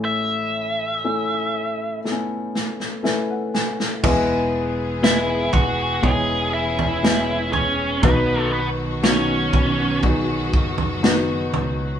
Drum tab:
CC |----------------|x---------------|----------------|
SD |--------o-ooo-oo|----o-------o---|----o-------o---|
FT |----------------|o-----o-o--o--o-|o-----o-o--o--o-|
BD |----------------|o-----o-o-------|o-----o-o-o-----|